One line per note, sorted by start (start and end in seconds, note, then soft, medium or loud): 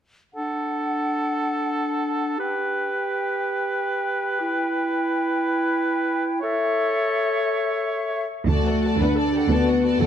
0.34 2.40 D4 soft
0.34 2.35 A4 soft
0.34 2.34 F#5 soft
2.38 4.40 G4 soft
2.38 6.24 B4 soft
2.38 6.40 G5 soft
4.40 6.39 E4 soft
6.41 8.27 A4 medium
6.41 8.26 C#5 soft
6.41 8.26 E5 soft
8.47 8.90 D2 soft
8.47 8.96 A3 soft
8.47 8.95 F#4 soft
8.47 8.65 A4 soft
8.47 8.65 D5 soft
8.47 8.64 A5 soft
8.65 8.83 A4 soft
8.65 8.83 D5 soft
8.65 8.82 F#5 soft
8.83 9.01 A4 soft
8.83 9.00 D5 soft
8.83 8.99 A5 soft
8.98 9.41 D2 soft
8.98 9.49 D4 soft
8.98 9.16 B4 soft
8.98 9.17 D5 soft
8.98 9.16 F#5 soft
9.02 9.16 A4 soft
9.16 9.33 A4 soft
9.16 9.32 A4 soft
9.16 9.33 D5 soft
9.16 9.33 A5 soft
9.33 9.40 G4 soft
9.33 9.51 A4 soft
9.33 9.51 D5 soft
9.33 9.52 F#5 soft
9.48 9.91 D2 soft
9.48 9.99 B3 soft
9.48 9.99 F#4 soft
9.48 9.68 A5 soft
9.52 9.68 A4 soft
9.52 9.68 D5 soft
9.68 9.85 A4 soft
9.68 9.84 D5 soft
9.68 9.84 F#5 soft
9.86 10.01 A4 soft
9.86 10.00 D5 soft
9.86 10.00 A5 soft
9.99 10.06 D2 soft
9.99 10.06 A3 soft
9.99 10.06 A4 soft
9.99 10.06 D5 soft
9.99 10.06 F#5 soft